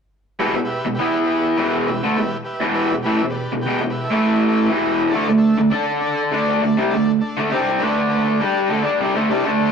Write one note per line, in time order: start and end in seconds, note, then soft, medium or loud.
0.39 0.54 E2 medium
0.39 0.54 B2 loud
0.39 0.60 G4 loud
0.39 0.60 B4 medium
0.39 0.60 E5 loud
0.56 0.80 E2 medium
0.56 0.80 B2 medium
0.65 0.88 G4 medium
0.65 0.87 B4 medium
0.65 0.88 E5 loud
0.85 1.00 E2 medium
0.85 0.99 B2 medium
0.95 1.17 G4 medium
0.95 1.18 B4 medium
0.95 1.18 E5 medium
0.99 1.58 E3 medium
0.99 1.58 B3 medium
0.99 1.59 E4 loud
1.25 1.47 G4 medium
1.25 1.48 B4 medium
1.25 1.48 E5 medium
1.56 1.87 E2 loud
1.56 1.87 B2 loud
1.56 1.88 E3 medium
1.56 1.78 G4 medium
1.56 1.78 B4 medium
1.56 1.78 E5 medium
1.85 2.07 G4 medium
1.85 2.07 B4 medium
1.85 2.08 E5 medium
1.89 2.04 E2 medium
1.89 2.03 B2 medium
2.03 2.18 D3 medium
2.03 2.18 A3 medium
2.16 2.42 E2 medium
2.16 2.42 B2 medium
2.16 2.37 G4 loud
2.16 2.37 B4 medium
2.16 2.37 E5 loud
2.44 2.66 G4 medium
2.44 2.67 B4 medium
2.44 2.67 E5 medium
2.61 2.90 E2 medium
2.61 2.90 B2 medium
2.61 2.91 E3 medium
2.74 2.96 G4 loud
2.74 2.96 B4 medium
2.74 2.96 E5 loud
2.91 3.07 E2 medium
2.91 3.05 B2 medium
3.02 3.21 A2 medium
3.02 3.25 G4 loud
3.02 3.26 B4 loud
3.02 3.26 E5 loud
3.07 3.21 E3 loud
3.22 3.46 E2 medium
3.22 3.47 B2 medium
3.30 3.54 G4 medium
3.30 3.53 B4 medium
3.30 3.54 D5 medium
3.53 3.65 E2 medium
3.53 3.66 B2 medium
3.61 3.84 G4 medium
3.61 3.84 B4 medium
3.61 3.85 G5 medium
3.66 3.81 E2 medium
3.66 3.81 B2 medium
3.82 4.05 E2 medium
3.82 4.06 B2 medium
3.90 4.08 G4 medium
3.90 4.08 B4 medium
3.90 4.04 E5 medium
4.04 4.43 E4 medium
4.04 4.43 A4 medium
4.04 4.44 E5 medium
4.11 4.69 A2 medium
4.11 4.70 E3 loud
4.11 4.70 A3 medium
4.48 4.67 E4 loud
4.48 4.67 A4 medium
4.48 4.64 E5 loud
4.64 5.03 G4 medium
4.64 5.03 B4 medium
4.64 5.04 E5 medium
4.70 5.14 E2 medium
4.70 5.14 B2 medium
4.70 5.14 E3 medium
5.09 5.32 D4 loud
5.09 5.32 A4 medium
5.09 5.33 D5 loud
5.14 5.28 D3 medium
5.14 5.28 A3 loud
5.29 5.53 D3 medium
5.29 5.53 A3 medium
5.38 5.61 D4 loud
5.38 5.61 A4 loud
5.38 5.62 E5 loud
5.58 5.74 D3 medium
5.58 5.71 A3 medium
5.70 5.92 D4 medium
5.70 6.32 D4 medium
5.70 5.92 A4 medium
5.70 6.32 A4 medium
5.70 5.92 D5 medium
5.70 6.32 D5 medium
6.00 6.22 D4 medium
6.00 6.22 A4 medium
6.00 6.23 D5 loud
6.31 6.61 D3 medium
6.31 6.61 A3 loud
6.31 6.63 D4 loud
6.31 6.54 D4 medium
6.31 6.53 A4 medium
6.31 6.54 D5 medium
6.62 6.77 D3 medium
6.62 6.78 A3 medium
6.62 6.83 D4 medium
6.62 6.84 A4 medium
6.62 6.84 D5 medium
6.77 6.92 C3 medium
6.77 6.93 G3 medium
6.91 7.18 D3 medium
6.91 7.12 D4 loud
6.91 7.12 A4 medium
6.91 7.12 D5 loud
6.95 7.18 A3 medium
7.21 7.42 D4 medium
7.21 7.42 A4 medium
7.21 7.42 D5 medium
7.37 7.51 D3 medium
7.37 7.52 A3 medium
7.49 7.81 C3 medium
7.49 7.81 G3 medium
7.49 7.71 D4 loud
7.49 7.71 A4 medium
7.49 7.72 D5 loud
7.54 7.82 C4 loud
7.78 8.41 D3 medium
7.78 8.00 D4 loud
7.78 8.01 A4 medium
7.78 8.01 B4 loud
7.83 8.41 A3 medium
7.83 8.41 D4 loud
8.09 8.31 D4 medium
8.09 8.31 A4 medium
8.09 8.31 B4 medium
8.39 8.70 G3 medium
8.39 8.61 D4 medium
8.39 8.71 D4 medium
8.39 8.71 G4 medium
8.39 8.61 A4 medium
8.39 8.61 D5 medium
8.68 8.85 D3 medium
8.68 8.83 A3 medium
8.68 8.90 D4 medium
8.68 8.91 A4 medium
8.68 8.91 D5 medium
8.83 8.99 G3 medium
8.83 8.99 D4 loud
8.99 9.14 C3 medium
8.99 9.15 G3 loud
8.99 9.21 D4 medium
8.99 9.22 A4 medium
9.03 9.22 C5 medium
9.14 9.29 D3 medium
9.14 9.30 A3 medium
9.29 9.44 C3 medium
9.29 9.45 G3 medium
9.29 9.51 D4 loud
9.29 9.51 A4 medium
9.29 9.51 D5 loud
9.44 9.72 D3 medium
9.44 9.72 A3 medium
9.44 9.72 D4 medium
9.59 9.72 D4 medium
9.59 9.72 A4 medium
9.59 9.72 C5 medium